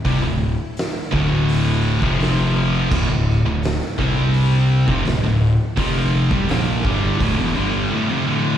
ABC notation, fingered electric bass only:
X:1
M:4/4
L:1/16
Q:1/4=84
K:Dm
V:1 name="Fingered electric bass" clef=bass
C,, D,,,2 z3 D,,,4- D,,, F,,,4- F,,, | D,,, D,,,2 D,,,2 z C,,4- C,, F,,, D,,, D,,,2 z | F,,,3 C,, B,,,2 G,,,2 D,,, E,,, G,,,2 z4 |]